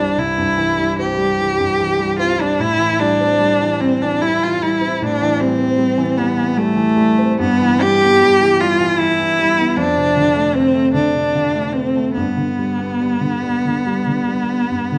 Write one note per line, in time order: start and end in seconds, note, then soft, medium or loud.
0.00 0.14 C2 medium
0.00 0.38 G2 medium
0.00 0.57 E3 medium
0.00 0.78 G3 medium
0.00 0.99 C4 medium
0.00 0.20 D4 medium
0.17 2.54 C2 soft
0.17 0.99 E4 loud
0.38 0.70 G2 medium
0.57 0.90 E3 soft
0.78 1.10 G3 soft
0.99 1.31 C4 soft
0.99 2.16 G4 loud
1.18 1.50 G3 medium
1.40 1.71 E3 soft
1.59 1.91 G2 soft
1.79 2.11 E3 soft
1.99 2.31 G3 medium
2.19 2.51 C4 soft
2.19 2.43 F4 medium
2.39 2.59 G3 medium
2.39 2.62 D4 medium
2.59 4.96 A2 medium
2.59 3.01 E4 loud
2.79 3.11 E3 soft
3.00 3.32 G3 medium
3.00 3.82 D4 loud
3.20 3.52 C4 medium
3.39 3.72 G3 medium
3.61 3.93 E3 soft
3.80 4.12 G3 medium
3.80 4.04 C4 medium
4.01 4.33 E3 medium
4.01 4.23 D4 medium
4.22 4.53 G3 soft
4.22 4.45 E4 loud
4.42 4.73 E3 soft
4.42 4.64 F4 medium
4.62 4.93 G3 soft
4.62 5.04 E4 medium
4.81 5.12 C4 medium
5.01 7.35 A2 medium
5.01 5.42 D4 loud
5.22 5.52 E3 medium
5.41 5.71 G3 medium
5.41 6.19 C4 loud
5.59 5.89 C4 soft
5.78 6.08 G3 medium
5.98 6.28 E3 medium
6.17 6.48 G3 medium
6.17 6.59 B3 medium
6.37 6.68 E3 medium
6.57 6.89 G3 medium
6.57 7.40 A3 loud
6.76 7.09 E3 medium
6.97 7.30 G3 medium
7.18 7.39 C4 medium
7.39 9.73 G2 medium
7.39 7.83 B3 loud
7.62 7.93 E3 medium
7.82 8.14 G3 medium
7.82 8.62 G4 loud
8.02 8.33 B3 medium
8.22 8.52 G3 medium
8.41 8.72 E3 medium
8.60 8.91 G3 medium
8.60 9.00 F4 loud
8.80 9.11 E3 medium
8.98 9.31 G3 medium
8.98 9.78 E4 loud
9.19 9.50 E3 soft
9.39 9.69 G3 medium
9.58 9.77 B3 medium
9.76 12.10 F2 medium
9.76 10.57 D4 loud
9.98 10.28 C3 medium
10.17 10.47 D3 medium
10.36 10.67 A3 soft
10.55 10.86 C4 medium
10.55 10.94 C4 loud
10.75 11.06 A3 medium
10.94 11.26 D3 soft
10.94 11.74 D4 medium
11.15 11.46 C3 soft
11.35 11.66 D3 soft
11.55 11.86 A3 soft
11.73 12.13 C4 medium
11.73 12.07 C4 soft
11.96 12.15 A3 soft
12.14 14.67 G2 medium
12.14 14.98 B3 medium
12.37 12.69 D3 soft
12.59 12.91 G3 soft
12.78 13.12 B3 soft
13.01 13.34 G3 soft
13.21 13.55 D3 soft
13.43 13.77 G3 soft
13.65 13.98 D3 soft
13.87 14.20 G3 soft
14.07 14.41 D3 soft
14.28 14.62 G3 soft
14.50 14.83 B3 soft
14.71 14.98 G2 soft
14.92 14.98 D3 soft